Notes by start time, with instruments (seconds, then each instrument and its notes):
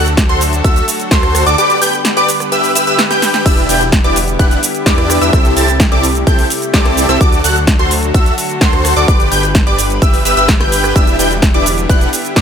Already playing: detuned saw bass D2, analog synth pad D3 F#3 A3 F#4 A4
0.06 closed hi-hat, shaker
0.17 kick, snare, closed hi-hat, shaker
0.29 detuned saw bass D2, supersaw synth F#4 A4 C5, digital synth lead C6, closed hi-hat
0.41 open hi-hat, shaker
0.53 closed hi-hat, shaker
0.64 detuned saw bass D2, supersaw synth F#4 A4 E5, digital synth lead E6, kick, closed hi-hat, shaker
0.76 closed hi-hat, shaker
0.88 open hi-hat, shaker
1.00 closed hi-hat, shaker
1.11 detuned saw bass D2, supersaw synth F#4 A4 C5, digital synth lead C6, kick, cross-stick, snare, closed hi-hat, shaker
1.23 cross-stick, closed hi-hat
1.35 cross-stick, open hi-hat, shaker
1.46 detuned saw bass D2, supersaw synth F#4 A4 D5, digital synth lead D6, closed hi-hat, shaker
1.58 analog synth pad G3 B3 G4 B4, supersaw synth G4 B4 D5, digital synth lead D6, closed hi-hat, shaker
1.70 closed hi-hat, shaker
1.82 supersaw synth G4 B4 G5, digital synth lead G6, open hi-hat, shaker
1.93 closed hi-hat, shaker
2.05 snare, closed hi-hat, shaker
2.17 supersaw synth G4 B4 D5, digital synth lead D6, closed hi-hat, shaker
2.29 open hi-hat, shaker
2.40 cross-stick, closed hi-hat, shaker
2.52 supersaw synth G4 B4 E5, digital synth lead E6, closed hi-hat, shaker
2.64 open hi-hat, shaker
2.75 supersaw synth G4 B4 E5, digital synth lead E6, open hi-hat, shaker
2.87 supersaw synth G4 B4 E5, digital synth lead E6, closed hi-hat, shaker
2.99 snare, closed hi-hat, shaker
3.11 supersaw synth G4 B4 G5, digital synth lead G6, snare, closed hi-hat, shaker
3.22 snare, open hi-hat, shaker
3.34 snare, closed hi-hat, shaker
3.46 detuned saw bass E1, analog synth pad B3 E4, supersaw synth D4 E4 G4 B4 E5, digital synth lead E6, kick, closed hi-hat, crash, shaker
3.57 closed hi-hat, shaker
3.69 detuned saw bass E1, supersaw synth D4 E4 G4 B4 G5, digital synth lead G6, open hi-hat, shaker
3.81 closed hi-hat, shaker
3.92 kick, snare, closed hi-hat, shaker
4.04 detuned saw bass E1, supersaw synth D4 E4 G4 B4 D5, digital synth lead D6, closed hi-hat
4.16 open hi-hat, shaker
4.28 closed hi-hat, shaker
4.39 detuned saw bass E1, supersaw synth D4 E4 G4 B4 F#5, digital synth lead F#6, kick, closed hi-hat, shaker
4.51 closed hi-hat, shaker
4.63 open hi-hat, shaker
4.75 closed hi-hat, shaker
4.86 detuned saw bass E2, supersaw synth D4 E4 G4 B4 D5, digital synth lead D6, kick, cross-stick, snare, closed hi-hat, shaker
4.98 cross-stick, closed hi-hat
5.10 cross-stick, open hi-hat, shaker
5.21 detuned saw bass E2, supersaw synth D4 E4 G4 B4 E5, digital synth lead E6, closed hi-hat, shaker
5.33 detuned saw bass C2, analog synth pad C3 A3, supersaw synth C4 E4 G4 A4 E5, digital synth lead E6, kick, closed hi-hat, shaker
5.45 closed hi-hat, shaker
5.57 detuned saw bass C2, supersaw synth C4 E4 G4 A4 A5, digital synth lead A6, open hi-hat, shaker
5.68 closed hi-hat, shaker
5.80 kick, snare, closed hi-hat, shaker
5.92 detuned saw bass C2, supersaw synth C4 E4 G4 A4 D5, digital synth lead D6, closed hi-hat
6.03 open hi-hat, shaker
6.15 closed hi-hat, shaker
6.27 detuned saw bass C2, supersaw synth C4 E4 G4 A4 G5, digital synth lead G6, kick, closed hi-hat, shaker
6.39 open hi-hat, shaker
6.50 open hi-hat, shaker
6.62 closed hi-hat, shaker
6.74 detuned saw bass C2, supersaw synth C4 E4 G4 A4 D5, digital synth lead D6, kick, snare, closed hi-hat, shaker
6.85 cross-stick, snare, closed hi-hat
6.97 open hi-hat, shaker
7.09 detuned saw bass C2, supersaw synth C4 E4 G4 A4 E5, digital synth lead E6, cross-stick, closed hi-hat, shaker
7.21 detuned saw bass D2, analog synth pad D3 F#3 F#4 A4, supersaw synth F#4 A4 D5, digital synth lead D6, kick, closed hi-hat, shaker
7.32 closed hi-hat, shaker
7.44 detuned saw bass D2, supersaw synth F#4 A4 F#5, digital synth lead F#6, open hi-hat, shaker
7.56 closed hi-hat, shaker
7.67 kick, snare, closed hi-hat, shaker
7.79 detuned saw bass D2, supersaw synth F#4 A4 C5, digital synth lead C6, closed hi-hat
7.91 open hi-hat, shaker
8.03 closed hi-hat, shaker
8.14 detuned saw bass D2, supersaw synth F#4 A4 E5, digital synth lead E6, kick, closed hi-hat, shaker
8.26 closed hi-hat, shaker
8.38 open hi-hat, shaker
8.50 closed hi-hat, shaker
8.61 detuned saw bass D2, supersaw synth F#4 A4 C5, digital synth lead C6, kick, cross-stick, snare, closed hi-hat, shaker
8.73 cross-stick, closed hi-hat
8.85 cross-stick, open hi-hat, shaker
8.96 detuned saw bass D2, supersaw synth F#4 A4 D5, digital synth lead D6, closed hi-hat, shaker
9.08 detuned saw bass G1, analog synth pad G3 B3 G4 B4, supersaw synth G4 B4 D5, digital synth lead D6, kick, closed hi-hat, shaker
9.20 closed hi-hat, shaker
9.32 detuned saw bass G1, supersaw synth G4 B4 G5, digital synth lead G6, open hi-hat, shaker
9.43 closed hi-hat, shaker
9.55 kick, snare, closed hi-hat, shaker
9.67 detuned saw bass G1, supersaw synth G4 B4 D5, digital synth lead D6, closed hi-hat
9.79 open hi-hat, shaker
9.90 closed hi-hat, shaker
10.02 detuned saw bass G1, supersaw synth G4 B4 E5, digital synth lead E6, kick, closed hi-hat, shaker
10.14 open hi-hat, shaker
10.25 detuned saw bass G1, supersaw synth G4 B4 E5, digital synth lead E6, open hi-hat, shaker
10.37 detuned saw bass G1, supersaw synth G4 B4 E5, digital synth lead E6, closed hi-hat, shaker
10.48 kick, snare, closed hi-hat, shaker
10.60 detuned saw bass G1, supersaw synth G4 B4 G5, digital synth lead G6, cross-stick, snare, closed hi-hat
10.72 open hi-hat, shaker
10.84 cross-stick, closed hi-hat, shaker
10.96 detuned saw bass E1, analog synth pad D3 E4, supersaw synth D4 E4 G4 B4 E5, digital synth lead E6, kick, closed hi-hat, shaker
11.07 closed hi-hat, shaker
11.19 detuned saw bass E1, supersaw synth D4 E4 G4 B4 G5, digital synth lead G6, open hi-hat, shaker
11.31 closed hi-hat, shaker
11.42 kick, snare, closed hi-hat, shaker
11.54 detuned saw bass E1, supersaw synth D4 E4 G4 B4 D5, digital synth lead D6, closed hi-hat
11.66 open hi-hat, shaker
11.78 closed hi-hat, shaker
11.89 detuned saw bass E1, supersaw synth D4 E4 G4 B4 F#5, digital synth lead F#6, kick, closed hi-hat, shaker
12.01 closed hi-hat, shaker
12.13 open hi-hat, shaker
12.25 closed hi-hat, shaker
12.36 detuned saw bass E2, supersaw synth D4 E4 G4 B4 D5, digital synth lead D6, kick, cross-stick, snare, closed hi-hat, shaker